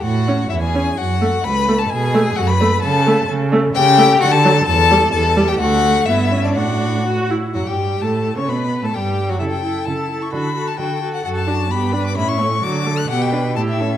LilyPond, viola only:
\new Staff \with { instrumentName = "Viola" } { \time 2/4 \key a \major \tempo 4 = 130 r8 cis'16 r8. cis'16 r16 | r8 a16 r8. a16 r16 | r8 a16 r8. a16 r16 | r8 a16 r8. a16 r16 |
\key d \major r8 a16 r8. fis16 r16 | r8 g16 r8. g16 r16 | a4 b8 cis'8 | d'4 fis'8 e'8 |
fis16 g8. a8. cis'16 | b8. a16 g8. fis16 | e'8 e'8 e'8 e'8 | fis'8 fis'8 fis'8 fis'8 |
fis'8 d'8 b8 d'8 | cis'8 a8 fis8 a8 | b8 d'8 e'8 cis'8 | }